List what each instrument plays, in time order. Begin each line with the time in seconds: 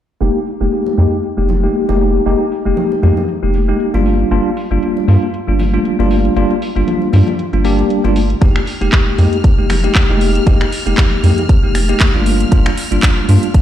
0.21 analog synth bass F1, tine electric piano G#3 A#3 D#4 G4, closed hi-hat
0.47 open hi-hat
0.60 analog synth bass F1, tine electric piano G#3 A#3 D#4 G4, closed hi-hat
0.72 closed hi-hat
0.86 high conga
0.98 analog synth bass F2, tine electric piano G#3 A#3 D#4 G4, open hi-hat
1.12 closed hi-hat
1.24 closed hi-hat
1.37 analog synth bass F1, tine electric piano G#3 A#3 D#4 G4
1.49 open hi-hat, high conga, low conga
1.63 tine electric piano G#3 A#3 D#4 G4, closed hi-hat
1.75 closed hi-hat
1.89 analog synth bass F1, tine electric piano G#3 A#3 D#4 G4, high conga
2.01 open hi-hat
2.15 closed hi-hat
2.26 analog synth bass F1, tine electric piano G#3 A#3 D#4 G4, closed hi-hat
2.52 open hi-hat
2.66 analog synth bass F1, tine electric piano G#3 A#3 D#4 G4, closed hi-hat
2.77 closed hi-hat, low conga
2.92 high conga
3.03 analog synth bass F2, tine electric piano G#3 A#3 D#4 G4, open hi-hat, low conga
3.17 closed hi-hat, low conga
3.29 closed hi-hat
3.43 analog synth bass F1, tine electric piano G#3 A#3 D#4 G4
3.54 open hi-hat, high conga
3.68 tine electric piano G#3 A#3 D#4 G4, closed hi-hat
3.80 closed hi-hat
3.94 analog synth bass G1, tine electric piano G3 A#3 D4 F4, high conga
4.06 open hi-hat
4.20 closed hi-hat
4.31 analog synth bass G1, tine electric piano G3 A#3 D4 F4, closed hi-hat
4.57 open hi-hat
4.71 analog synth bass G1, tine electric piano G3 A#3 D4 F4, closed hi-hat
4.83 closed hi-hat
4.97 high conga
5.08 analog synth bass G2, tine electric piano G3 A#3 D4 F4, open hi-hat
5.22 closed hi-hat
5.34 closed hi-hat
5.48 analog synth bass G1, tine electric piano G3 A#3 D4 F4
5.59 open hi-hat, high conga, low conga
5.73 tine electric piano G3 A#3 D4 F4, closed hi-hat
5.85 closed hi-hat
5.99 analog synth bass G1, tine electric piano G3 A#3 D4 F4, high conga
6.11 open hi-hat
6.25 closed hi-hat
6.36 analog synth bass G1, tine electric piano G3 A#3 D4 F4, closed hi-hat
6.51 closed hi-hat
6.62 open hi-hat
6.76 analog synth bass G1, tine electric piano G3 A#3 D4 F4, closed hi-hat
6.87 closed hi-hat, low conga
7.02 high conga
7.13 analog synth bass G2, tine electric piano G3 A#3 D4 F4, open hi-hat, low conga
7.27 closed hi-hat, low conga
7.39 closed hi-hat
7.53 analog synth bass G1, tine electric piano G3 A#3 D4 F4, closed hi-hat
7.64 tine electric piano G3 A#3 D4 G4, open hi-hat, high conga
7.79 closed hi-hat
7.90 closed hi-hat
8.04 analog synth bass G1, tine electric piano G3 A#3 D4 F4, closed hi-hat, high conga
8.16 open hi-hat
8.30 closed hi-hat
8.41 analog synth bass F1, tine electric piano G#3 A#3 D#4 G4, violin section F6, kick, closed hi-hat
8.56 finger snap
8.67 open hi-hat
8.81 analog synth bass F1, tine electric piano G#3 A#3 D#4 G4, closed hi-hat
8.92 kick, clap, closed hi-hat
9.07 high conga
9.18 analog synth bass F2, tine electric piano G#3 A#3 D#4 G4, open hi-hat
9.33 closed hi-hat
9.44 kick, closed hi-hat
9.58 analog synth bass F1, tine electric piano G#3 A#3 D#4 G4
9.69 finger snap, open hi-hat, high conga, low conga
9.84 tine electric piano G#3 A#3 D#4 G4, closed hi-hat
9.95 kick, clap, closed hi-hat
10.09 analog synth bass F1, tine electric piano G#3 A#3 D#4 G4, high conga
10.21 open hi-hat
10.35 closed hi-hat
10.46 analog synth bass F1, tine electric piano G#3 A#3 D#4 G4, kick, closed hi-hat
10.61 finger snap
10.72 open hi-hat
10.86 analog synth bass F1, tine electric piano G#3 A#3 D#4 G4, closed hi-hat
10.98 kick, clap, closed hi-hat, low conga
11.13 high conga
11.23 analog synth bass F2, tine electric piano G#3 A#3 D#4 G4, open hi-hat, low conga
11.38 closed hi-hat, low conga
11.49 kick, closed hi-hat
11.63 analog synth bass F1, tine electric piano G#3 A#3 D#4 G4
11.75 finger snap, open hi-hat, high conga
11.89 tine electric piano G#3 A#3 D#4 G4, closed hi-hat
12.00 kick, clap, closed hi-hat
12.14 analog synth bass G1, tine electric piano G3 A#3 D4 F4, high conga
12.26 open hi-hat
12.40 closed hi-hat
12.51 analog synth bass G1, tine electric piano G3 A#3 D4 F4, kick, closed hi-hat
12.66 finger snap
12.77 open hi-hat
12.91 analog synth bass G1, tine electric piano G3 A#3 D4 F4, closed hi-hat
13.03 kick, clap, closed hi-hat
13.17 high conga
13.28 analog synth bass G2, tine electric piano G3 A#3 D4 F4, open hi-hat
13.43 closed hi-hat
13.54 kick, closed hi-hat